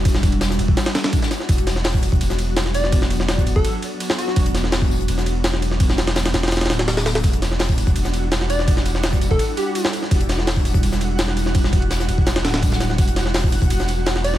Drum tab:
RD |x---x-x-x---x---x-x-x-x-x-x-x---|x-x-x---x---x---x---x---x---x---|x---x---x---x---x---x---x---x---|x-x-x---x-------x---x---x---x---|
HH |----------x---------------------|--x-----o-----x---x-------------|----------x---------------------|--x-----o-----x---x-------------|
TB |x---x---x---x---x---x---x---x---|x---x-------x---x---x---x---x---|x---x---x---x---x---x---x---x---|x---x-------x---x---x---x---x---|
SD |--o-----o-o-----o-o-o-o---o-o-o-|----o-o-o---------o-----o-o---o-|--o---o-o-----------------o---o-|----o-o-o---------o-----o-o---o-|
BD |o---o---------o---------o-------|o---------o---o-----------------|o---------o---o-----------------|o---------o---------------------|

RD |x---x-x-x-x-x-xxxxxxx-x-x-x-x-x-|x-x-x---x---x---x---x---x---x---|x---x---x---x---x---x---x---x---|x-x-x---x---x---x---x---x---x---|
HH |----------x-------x-----o-o-o---|--x-----o-----x---x-------------|----------x---------------------|--x-----o-----x---x-------------|
TB |x---x---x---x---x---x-----------|x---x-------x---x---x---x---x---|x---x---x---x---x---x---x---x---|x---x-------x---x---x---x---x---|
SD |--o-o-o-o-o-o-ooooooo-o-o-o-o-o-|----o-o-o---------o-----o-o---o-|--o---o-o-----------------o---o-|----o-o-o---------o-----o-o---o-|
BD |o-------------------------------|o---------o---o-----------------|o---------o---o-----------------|o---------o---o-----------------|

RD |x---x-x-x---x---x-x-x-x-x-x-x---|x-x-x---x---x---x---x---x---x---|
HH |----------x---------------------|--x-----o-----x---x-------------|
TB |x---x---x---x---x---x---x---x---|x---x-------x---x---x---x---x---|
SD |--o-----o-o-----o-o-o-o---o-o-o-|----o-o-o---------o-----o-o---o-|
BD |o---o---------o---------o-------|o---------o---o-----------------|